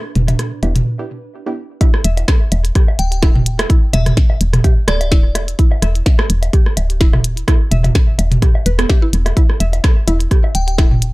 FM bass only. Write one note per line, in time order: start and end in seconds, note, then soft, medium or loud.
0.16 0.35 E1 loud
0.63 0.82 E1 loud
2.05 2.24 E1 loud
2.52 2.71 E1 loud
2.99 3.48 D1 medium
3.46 3.66 E1 medium
3.93 4.13 E1 loud
4.41 4.60 E1 loud
4.88 5.37 D1 medium
5.35 5.55 E1 medium
5.82 6.02 E1 loud
6.30 6.49 E1 loud
6.77 7.26 D1 medium
7.24 7.44 E1 medium
7.71 7.91 E1 loud
8.19 8.38 E1 loud
8.66 8.85 E1 loud
9.13 9.33 E1 loud
9.60 9.80 E1 loud
10.08 10.27 E1 loud
10.55 11.03 D1 medium
11.02 11.13 E1 medium